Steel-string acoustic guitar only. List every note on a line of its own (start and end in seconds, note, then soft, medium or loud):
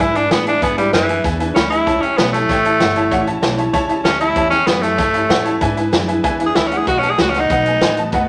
0.00 0.15 E3 medium
0.00 0.16 G#3 medium
0.00 0.14 D4 medium
0.00 0.13 E4 medium
0.14 0.31 E3 soft
0.14 0.31 G#3 medium
0.14 0.31 D4 medium
0.14 0.30 E4 soft
0.31 0.46 E2 medium
0.31 0.47 B2 medium
0.31 0.47 E3 medium
0.31 0.47 G#3 medium
0.31 0.45 D4 medium
0.31 0.44 E4 medium
0.45 0.61 E3 soft
0.45 0.62 G#3 soft
0.45 0.62 D4 soft
0.45 0.61 E4 soft
0.61 0.77 E2 medium
0.61 0.78 B2 medium
0.61 0.78 E3 medium
0.61 0.78 G#3 medium
0.61 0.77 D4 medium
0.61 0.75 E4 medium
0.77 0.94 E3 soft
0.77 0.94 G#3 soft
0.77 0.93 D4 soft
0.77 0.93 E4 medium
0.93 1.09 E2 medium
0.93 1.09 B2 medium
0.93 1.10 E3 medium
0.93 1.09 G#3 medium
0.93 1.09 D4 medium
0.93 1.07 E4 medium
1.08 1.22 E3 soft
1.08 1.24 G#3 soft
1.08 1.25 D4 soft
1.08 1.24 E4 medium
1.24 1.40 E3 medium
1.24 1.40 G#3 medium
1.24 1.40 D4 medium
1.24 1.39 E4 medium
1.40 1.56 E3 medium
1.40 1.57 G#3 medium
1.40 1.56 D4 medium
1.40 1.56 E4 medium
1.56 1.71 E2 medium
1.56 1.72 B2 medium
1.56 1.72 E3 medium
1.56 1.72 G#3 medium
1.56 1.71 D4 medium
1.56 1.70 E4 medium
1.71 1.86 E3 soft
1.71 1.88 G#3 soft
1.71 1.87 D4 soft
1.71 1.87 E4 medium
1.87 2.02 A2 medium
1.87 2.03 E3 medium
1.87 2.03 G3 medium
1.87 2.03 C#4 medium
1.87 2.01 E4 medium
2.02 2.18 G3 soft
2.02 2.19 C#4 soft
2.02 2.18 E4 soft
2.18 2.33 A2 medium
2.18 2.34 E3 medium
2.18 2.34 G3 medium
2.18 2.34 C#4 medium
2.18 2.33 E4 medium
2.34 2.49 G3 soft
2.34 2.51 C#4 soft
2.34 2.49 E4 medium
2.50 2.65 E3 medium
2.50 2.65 G3 medium
2.50 2.65 C#4 medium
2.64 2.80 G3 soft
2.64 2.80 C#4 medium
2.64 2.80 E4 medium
2.80 2.96 A2 medium
2.80 2.96 E3 medium
2.80 2.96 G3 medium
2.80 2.96 C#4 medium
2.80 2.94 E4 loud
2.95 3.11 G3 soft
2.95 3.11 C#4 soft
2.95 3.11 E4 medium
3.11 3.27 A2 medium
3.11 3.27 E3 medium
3.11 3.27 G3 loud
3.11 3.27 C#4 medium
3.11 3.26 E4 loud
3.27 3.41 G3 soft
3.27 3.43 C#4 medium
3.27 3.43 E4 medium
3.42 3.58 A2 loud
3.42 3.58 E3 medium
3.42 3.58 G3 loud
3.42 3.58 C#4 loud
3.42 3.56 E4 loud
3.58 3.72 G3 soft
3.58 3.74 C#4 medium
3.58 3.74 E4 medium
3.72 3.89 E3 medium
3.72 3.89 G3 medium
3.72 3.89 C#4 medium
3.72 3.87 E4 medium
3.88 4.04 G3 soft
3.88 4.04 C#4 medium
3.88 4.05 E4 medium
4.04 4.20 A2 medium
4.04 4.21 E3 medium
4.04 4.21 G3 medium
4.04 4.20 C#4 medium
4.04 4.18 E4 medium
4.19 4.35 G3 soft
4.19 4.35 C#4 soft
4.19 4.36 E4 soft
4.35 4.52 A2 medium
4.35 4.52 E3 medium
4.35 4.52 G3 medium
4.35 4.52 C#4 medium
4.35 4.51 E4 medium
4.52 4.67 G3 soft
4.52 4.68 C#4 soft
4.52 4.68 E4 soft
4.67 4.83 A2 medium
4.67 4.84 E3 medium
4.67 4.84 G3 medium
4.67 4.83 C#4 medium
4.67 4.81 E4 medium
4.82 4.98 G3 soft
4.82 4.99 C#4 soft
4.82 4.99 E4 medium
4.97 5.14 E3 medium
4.97 5.15 G3 medium
4.97 5.15 C#4 medium
4.97 5.13 E4 medium
5.14 5.30 G3 soft
5.14 5.30 C#4 medium
5.14 5.30 E4 medium
5.30 5.46 A2 medium
5.30 5.46 E3 medium
5.30 5.46 G3 medium
5.30 5.45 C#4 medium
5.30 5.44 E4 medium
5.45 5.62 G3 medium
5.45 5.62 C#4 medium
5.45 5.61 E4 medium
5.60 5.77 E2 medium
5.60 5.77 B2 loud
5.60 5.78 E3 loud
5.60 5.78 G#3 loud
5.60 5.77 D4 loud
5.60 5.75 E4 loud
5.77 5.92 E3 soft
5.77 5.92 G#3 soft
5.77 5.93 D4 medium
5.77 5.93 E4 medium
5.92 6.08 E2 medium
5.92 6.08 B2 medium
5.92 6.09 E3 loud
5.92 6.09 G#3 loud
5.92 6.08 D4 loud
5.92 6.07 E4 loud
6.08 6.22 E3 soft
6.08 6.24 G#3 medium
6.08 6.24 D4 medium
6.08 6.24 E4 medium
6.23 6.40 E3 medium
6.23 6.40 G#3 medium
6.23 6.40 D4 medium
6.23 6.38 E4 medium
6.40 6.56 E3 soft
6.40 6.56 G#3 medium
6.40 6.56 D4 medium
6.40 6.56 E4 medium
6.56 6.72 E2 medium
6.56 6.72 B2 medium
6.56 6.72 E3 medium
6.56 6.72 G#3 medium
6.56 6.72 D4 medium
6.56 6.71 E4 medium
6.72 6.88 E3 soft
6.72 6.88 G#3 soft
6.72 6.88 D4 soft
6.72 6.87 E4 medium
6.87 7.03 B2 medium
6.87 7.03 D#3 medium
6.87 7.04 A3 medium
6.87 7.03 B3 medium
6.87 7.02 F#4 medium
7.03 7.19 A3 soft
7.03 7.19 B3 soft
7.03 7.19 F#4 soft
7.19 7.34 B2 medium
7.19 7.35 D#3 medium
7.19 7.35 A3 medium
7.19 7.35 B3 medium
7.19 7.32 F#4 medium
7.34 7.50 A3 soft
7.34 7.51 B3 soft
7.34 7.50 F#4 medium
7.50 7.66 D#3 medium
7.50 7.67 A3 medium
7.50 7.66 B3 medium
7.50 7.64 F#4 medium
7.65 7.81 A3 soft
7.65 7.82 B3 medium
7.65 7.81 F#4 medium
7.81 7.97 B2 medium
7.81 7.97 D#3 medium
7.81 7.97 A3 medium
7.81 7.97 B3 medium
7.81 7.95 F#4 medium
7.96 8.12 A3 soft
7.96 8.13 B3 soft
7.96 8.12 F#4 medium
8.12 8.28 B2 medium
8.12 8.29 D#3 loud
8.12 8.29 A3 medium
8.12 8.28 B3 loud
8.12 8.25 F#4 loud